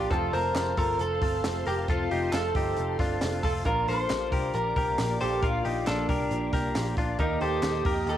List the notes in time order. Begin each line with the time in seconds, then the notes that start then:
Already playing: A#3 D4 F4 G4 F5
0.09 F1 F2 C3 F3 A3 C4 F4 A4 C5 A5 C6, kick, hi-hat pedal, open hi-hat
0.33 F1 F3 A3 C4 F4 A#4 C5 A5, hi-hat pedal, open hi-hat
0.55 F1 F2 C3 F3 A3 C4 F4, snare, clap, hi-hat pedal, open hi-hat
0.77 G1 F3 A3 C4 F4 A4 A#4, kick, hi-hat pedal, open hi-hat
0.99 F1 F3 A3 C4 F4 A4, hi-hat pedal, open hi-hat
1.21 G1 F3 A3 C4 F4 A4, kick, hi-hat pedal, open hi-hat
1.43 F1 F2 C3 F3 A3 C4 F4, snare, clap, hi-hat pedal, open hi-hat
1.66 F1 F3 A3 F4 G4 A#4, hi-hat pedal, open hi-hat
1.88 F1 F2 C3 F3 A3 C4 F4 A4, kick, hi-hat pedal, open hi-hat
2.10 F1 F3 A3 C4 D#4 F4 G4, hi-hat pedal, open hi-hat
2.32 F1 F2 C3 F3 A3 C4 F4 A4, snare, clap, hi-hat pedal, open hi-hat
2.55 G1 F3 A3 C4 D#4 F4 G4, kick, hi-hat pedal, open hi-hat
2.77 F1 F3 A3 C4 F4, hi-hat pedal, open hi-hat
2.99 G1 F3 A3 C4 D4 F4, kick, snare, hi-hat pedal, open hi-hat
3.21 F1 F2 C3 F3 A3 C4 F4, snare, clap, hi-hat pedal, open hi-hat
3.43 F1 A3 C4 F4 A4, kick, hi-hat pedal, open hi-hat
3.48 F3
3.64 A#1 A#2 F3 A#3 D4 F4 A#4 D5 D6, kick, hi-hat pedal, open hi-hat
3.68 D4 F4
3.87 A#1 A#3 D4 F4 A4 C5, hi-hat pedal, open hi-hat
4.09 A#1 A#2 F3 A#3 D4 F4, snare, clap, hi-hat pedal, open hi-hat
4.30 C2 A#3 D4 F4 G4 A#4, kick, hi-hat pedal, open hi-hat
4.53 A#1 F3 A#3 D4 F4 A#4, hi-hat pedal, open hi-hat
4.76 C2 A#3 D4 F4 G4 A#4, kick, hi-hat pedal, open hi-hat
4.98 A#1 A#2 F3 A#3 D4 F4, snare, clap, hi-hat pedal, open hi-hat
5.20 A#1 D4 F4 G4 A4 C5, hi-hat pedal, open hi-hat
5.41 A#1 A#2 F3 A#3 D4 F4 A#4, kick, hi-hat pedal, open hi-hat
5.65 A#1 A#3 D4 D#4 G4, hi-hat pedal, open hi-hat
5.86 A#1 A#2 F3 A#3 D4 F4 A4, snare, clap, hi-hat pedal, open hi-hat
6.09 C2 A#3 D4 F4 G4 A#4, kick, hi-hat pedal, open hi-hat
6.30 A#1 F3 A#3 D4 F4, hi-hat pedal, open hi-hat
6.52 C2 A#3 D4 F4 G4 A#4, kick, snare, hi-hat pedal, open hi-hat
6.74 A#1 A#2 F3 A#3 D4 F4, snare, clap, hi-hat pedal, open hi-hat
6.96 A#1 A#3 D4 F4, kick, hi-hat pedal, open hi-hat
7.18 D#2 D#3 A#3 D#4 G4 A#4 D#5 G5 D#6, kick, hi-hat pedal, open hi-hat
7.39 D#2 A#3 D#4 G4 A4 C5, hi-hat pedal, open hi-hat
7.62 D#2 D#3 A#3 D#4 G4, snare, clap, hi-hat pedal, open hi-hat
7.84 F2 A#3 D#4 G4 A#4, kick, hi-hat pedal, open hi-hat
8.06 D#2 D#3 A#3 D#4 G4 A4, hi-hat pedal, open hi-hat